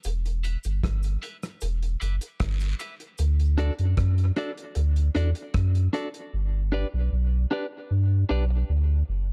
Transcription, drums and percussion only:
0.04 closed hi-hat, cabasa
0.26 closed hi-hat
0.44 closed hi-hat, cabasa
0.64 closed hi-hat, cabasa
0.83 kick, cross-stick, closed hi-hat
1.03 closed hi-hat, cabasa
1.23 closed hi-hat
1.43 cross-stick, closed hi-hat, cabasa
1.61 closed hi-hat, cabasa
1.83 closed hi-hat
2.01 closed hi-hat, cabasa
2.21 closed hi-hat, cabasa
2.40 kick, cross-stick, closed hi-hat, long guiro
2.60 closed hi-hat, cabasa
2.79 closed hi-hat, cabasa
3.00 closed hi-hat
3.18 closed hi-hat, cabasa
3.40 closed hi-hat
3.58 closed hi-hat
3.79 closed hi-hat
3.97 kick, cross-stick, closed hi-hat
4.18 closed hi-hat
4.36 closed hi-hat
4.57 closed hi-hat
4.75 closed hi-hat
4.96 closed hi-hat
5.15 cross-stick, closed hi-hat
5.35 closed hi-hat
5.54 kick, cross-stick, closed hi-hat
5.75 closed hi-hat
5.94 closed hi-hat
6.14 closed hi-hat

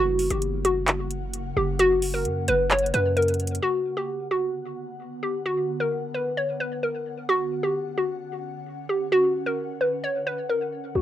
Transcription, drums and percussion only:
0.19 closed hi-hat, open hi-hat
0.30 closed hi-hat
0.42 closed hi-hat
0.65 closed hi-hat
0.88 clap, closed hi-hat
1.11 closed hi-hat
1.34 closed hi-hat
1.79 closed hi-hat
2.02 open hi-hat
2.25 closed hi-hat
2.48 closed hi-hat
2.71 clap, closed hi-hat
2.79 closed hi-hat
2.86 closed hi-hat
2.94 closed hi-hat
3.17 closed hi-hat
3.22 closed hi-hat
3.28 closed hi-hat
3.34 closed hi-hat
3.40 closed hi-hat
3.47 closed hi-hat
3.55 closed hi-hat

